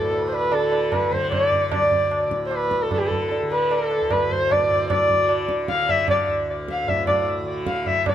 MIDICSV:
0, 0, Header, 1, 4, 480
1, 0, Start_track
1, 0, Tempo, 400000
1, 144, Time_signature, 4, 2, 24, 8
1, 4463, Tempo, 394737
1, 9848, End_track
2, 0, Start_track
2, 0, Title_t, "Sarangi"
2, 0, Program_c, 0, 110
2, 0, Note_on_c, 0, 69, 82
2, 163, Note_off_c, 0, 69, 0
2, 326, Note_on_c, 0, 72, 56
2, 410, Note_on_c, 0, 71, 83
2, 428, Note_off_c, 0, 72, 0
2, 642, Note_on_c, 0, 69, 80
2, 660, Note_off_c, 0, 71, 0
2, 1119, Note_on_c, 0, 71, 73
2, 1137, Note_off_c, 0, 69, 0
2, 1350, Note_on_c, 0, 72, 82
2, 1368, Note_off_c, 0, 71, 0
2, 1582, Note_off_c, 0, 72, 0
2, 1589, Note_on_c, 0, 74, 80
2, 2036, Note_off_c, 0, 74, 0
2, 2066, Note_on_c, 0, 74, 86
2, 2739, Note_off_c, 0, 74, 0
2, 2954, Note_on_c, 0, 72, 62
2, 3066, Note_on_c, 0, 71, 82
2, 3084, Note_off_c, 0, 72, 0
2, 3388, Note_on_c, 0, 69, 78
2, 3406, Note_off_c, 0, 71, 0
2, 3507, Note_off_c, 0, 69, 0
2, 3513, Note_on_c, 0, 69, 77
2, 3589, Note_on_c, 0, 67, 65
2, 3607, Note_off_c, 0, 69, 0
2, 3688, Note_on_c, 0, 69, 81
2, 3706, Note_off_c, 0, 67, 0
2, 3997, Note_off_c, 0, 69, 0
2, 4217, Note_on_c, 0, 71, 83
2, 4478, Note_on_c, 0, 69, 90
2, 4497, Note_off_c, 0, 71, 0
2, 4952, Note_on_c, 0, 71, 85
2, 4970, Note_off_c, 0, 69, 0
2, 5189, Note_on_c, 0, 72, 96
2, 5207, Note_off_c, 0, 71, 0
2, 5431, Note_on_c, 0, 74, 90
2, 5449, Note_off_c, 0, 72, 0
2, 5899, Note_off_c, 0, 74, 0
2, 5906, Note_on_c, 0, 74, 98
2, 6581, Note_off_c, 0, 74, 0
2, 6865, Note_on_c, 0, 77, 95
2, 7118, Note_on_c, 0, 76, 91
2, 7137, Note_off_c, 0, 77, 0
2, 7355, Note_off_c, 0, 76, 0
2, 7360, Note_on_c, 0, 74, 82
2, 7579, Note_off_c, 0, 74, 0
2, 8107, Note_on_c, 0, 77, 82
2, 8313, Note_on_c, 0, 76, 83
2, 8331, Note_off_c, 0, 77, 0
2, 8531, Note_off_c, 0, 76, 0
2, 8539, Note_on_c, 0, 74, 74
2, 8766, Note_off_c, 0, 74, 0
2, 9267, Note_on_c, 0, 77, 83
2, 9455, Note_off_c, 0, 77, 0
2, 9455, Note_on_c, 0, 77, 60
2, 9504, Note_on_c, 0, 76, 91
2, 9522, Note_off_c, 0, 77, 0
2, 9742, Note_off_c, 0, 76, 0
2, 9772, Note_on_c, 0, 74, 84
2, 9848, Note_off_c, 0, 74, 0
2, 9848, End_track
3, 0, Start_track
3, 0, Title_t, "Tanpura"
3, 0, Program_c, 1, 104
3, 0, Note_on_c, 1, 38, 53
3, 0, Note_on_c, 1, 45, 68
3, 0, Note_on_c, 1, 50, 58
3, 626, Note_off_c, 1, 50, 0
3, 626, Note_on_c, 1, 50, 57
3, 1323, Note_off_c, 1, 50, 0
3, 1323, Note_on_c, 1, 50, 57
3, 2013, Note_off_c, 1, 38, 0
3, 2018, Note_on_c, 1, 38, 50
3, 2713, Note_off_c, 1, 45, 0
3, 2717, Note_on_c, 1, 45, 61
3, 3410, Note_off_c, 1, 50, 0
3, 3410, Note_on_c, 1, 50, 63
3, 4112, Note_off_c, 1, 50, 0
3, 4112, Note_on_c, 1, 50, 50
3, 4810, Note_off_c, 1, 38, 0
3, 4815, Note_on_c, 1, 38, 64
3, 5495, Note_off_c, 1, 45, 0
3, 5500, Note_on_c, 1, 45, 57
3, 6192, Note_off_c, 1, 50, 0
3, 6192, Note_on_c, 1, 50, 57
3, 6883, Note_off_c, 1, 50, 0
3, 6883, Note_on_c, 1, 50, 58
3, 7560, Note_off_c, 1, 38, 0
3, 7565, Note_on_c, 1, 38, 57
3, 8253, Note_off_c, 1, 45, 0
3, 8258, Note_on_c, 1, 45, 60
3, 8975, Note_off_c, 1, 50, 0
3, 8975, Note_on_c, 1, 50, 58
3, 9759, Note_off_c, 1, 45, 0
3, 9759, Note_on_c, 1, 45, 64
3, 9848, Note_off_c, 1, 38, 0
3, 9848, Note_off_c, 1, 45, 0
3, 9848, Note_off_c, 1, 50, 0
3, 9848, End_track
4, 0, Start_track
4, 0, Title_t, "Tabla"
4, 143, Note_on_c, 9, 63, 77
4, 263, Note_off_c, 9, 63, 0
4, 390, Note_on_c, 9, 60, 58
4, 510, Note_off_c, 9, 60, 0
4, 621, Note_on_c, 9, 60, 76
4, 741, Note_off_c, 9, 60, 0
4, 863, Note_on_c, 9, 60, 62
4, 983, Note_off_c, 9, 60, 0
4, 1104, Note_on_c, 9, 60, 64
4, 1104, Note_on_c, 9, 64, 62
4, 1224, Note_off_c, 9, 60, 0
4, 1224, Note_off_c, 9, 64, 0
4, 1348, Note_on_c, 9, 64, 52
4, 1468, Note_off_c, 9, 64, 0
4, 1585, Note_on_c, 9, 60, 73
4, 1585, Note_on_c, 9, 64, 65
4, 1705, Note_off_c, 9, 60, 0
4, 1705, Note_off_c, 9, 64, 0
4, 1824, Note_on_c, 9, 64, 50
4, 1944, Note_off_c, 9, 64, 0
4, 2059, Note_on_c, 9, 60, 102
4, 2059, Note_on_c, 9, 64, 91
4, 2179, Note_off_c, 9, 60, 0
4, 2179, Note_off_c, 9, 64, 0
4, 2296, Note_on_c, 9, 64, 69
4, 2416, Note_off_c, 9, 64, 0
4, 2536, Note_on_c, 9, 60, 80
4, 2656, Note_off_c, 9, 60, 0
4, 2775, Note_on_c, 9, 37, 62
4, 2895, Note_off_c, 9, 37, 0
4, 3013, Note_on_c, 9, 60, 76
4, 3133, Note_off_c, 9, 60, 0
4, 3254, Note_on_c, 9, 37, 56
4, 3374, Note_off_c, 9, 37, 0
4, 3490, Note_on_c, 9, 60, 69
4, 3490, Note_on_c, 9, 64, 67
4, 3610, Note_off_c, 9, 60, 0
4, 3610, Note_off_c, 9, 64, 0
4, 3733, Note_on_c, 9, 64, 51
4, 3853, Note_off_c, 9, 64, 0
4, 3978, Note_on_c, 9, 63, 71
4, 4098, Note_off_c, 9, 63, 0
4, 4221, Note_on_c, 9, 60, 53
4, 4341, Note_off_c, 9, 60, 0
4, 4456, Note_on_c, 9, 60, 74
4, 4577, Note_off_c, 9, 60, 0
4, 4698, Note_on_c, 9, 60, 56
4, 4819, Note_off_c, 9, 60, 0
4, 4933, Note_on_c, 9, 60, 72
4, 4933, Note_on_c, 9, 64, 62
4, 5054, Note_off_c, 9, 60, 0
4, 5054, Note_off_c, 9, 64, 0
4, 5173, Note_on_c, 9, 64, 47
4, 5294, Note_off_c, 9, 64, 0
4, 5426, Note_on_c, 9, 60, 75
4, 5426, Note_on_c, 9, 64, 61
4, 5547, Note_off_c, 9, 60, 0
4, 5547, Note_off_c, 9, 64, 0
4, 5668, Note_on_c, 9, 64, 49
4, 5790, Note_off_c, 9, 64, 0
4, 5901, Note_on_c, 9, 60, 99
4, 5901, Note_on_c, 9, 64, 87
4, 6023, Note_off_c, 9, 60, 0
4, 6023, Note_off_c, 9, 64, 0
4, 6140, Note_on_c, 9, 64, 64
4, 6261, Note_off_c, 9, 64, 0
4, 6373, Note_on_c, 9, 60, 75
4, 6495, Note_off_c, 9, 60, 0
4, 6611, Note_on_c, 9, 37, 62
4, 6733, Note_off_c, 9, 37, 0
4, 6851, Note_on_c, 9, 37, 69
4, 6973, Note_off_c, 9, 37, 0
4, 7101, Note_on_c, 9, 63, 73
4, 7101, Note_on_c, 9, 64, 60
4, 7223, Note_off_c, 9, 63, 0
4, 7223, Note_off_c, 9, 64, 0
4, 7333, Note_on_c, 9, 60, 86
4, 7333, Note_on_c, 9, 64, 87
4, 7455, Note_off_c, 9, 60, 0
4, 7455, Note_off_c, 9, 64, 0
4, 8068, Note_on_c, 9, 37, 64
4, 8190, Note_off_c, 9, 37, 0
4, 8308, Note_on_c, 9, 63, 77
4, 8308, Note_on_c, 9, 64, 62
4, 8430, Note_off_c, 9, 63, 0
4, 8430, Note_off_c, 9, 64, 0
4, 8541, Note_on_c, 9, 60, 92
4, 8541, Note_on_c, 9, 64, 84
4, 8663, Note_off_c, 9, 60, 0
4, 8663, Note_off_c, 9, 64, 0
4, 9262, Note_on_c, 9, 37, 75
4, 9383, Note_off_c, 9, 37, 0
4, 9500, Note_on_c, 9, 63, 71
4, 9500, Note_on_c, 9, 64, 63
4, 9622, Note_off_c, 9, 63, 0
4, 9622, Note_off_c, 9, 64, 0
4, 9743, Note_on_c, 9, 60, 105
4, 9743, Note_on_c, 9, 64, 96
4, 9848, Note_off_c, 9, 60, 0
4, 9848, Note_off_c, 9, 64, 0
4, 9848, End_track
0, 0, End_of_file